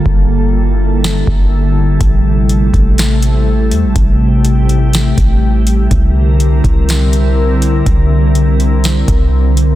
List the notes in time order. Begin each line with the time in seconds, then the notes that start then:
Already playing: D3 G3 A#3 A4
0.05 G1 E4, kick
1.04 snare
1.27 G1, kick
2.01 A1 C3 A3, kick, closed hi-hat
2.49 closed hi-hat
2.74 A1, kick, closed hi-hat
2.98 snare, closed hi-hat
3.22 closed hi-hat
3.71 E2, closed hi-hat
3.84 A1
3.96 A1 G4, kick, closed hi-hat
4.45 closed hi-hat
4.69 closed hi-hat
4.93 snare, closed hi-hat
5.18 A1, kick, closed hi-hat
5.67 closed hi-hat
5.91 C2 D3 G3 C4 E4 A#4, kick, closed hi-hat
6.40 closed hi-hat
6.64 C2, kick, closed hi-hat
6.89 snare, closed hi-hat
7.13 closed hi-hat
7.62 closed hi-hat
7.86 C2, kick, closed hi-hat
8.35 closed hi-hat
8.60 closed hi-hat
8.84 snare, closed hi-hat
9.08 C2, kick, closed hi-hat
9.57 closed hi-hat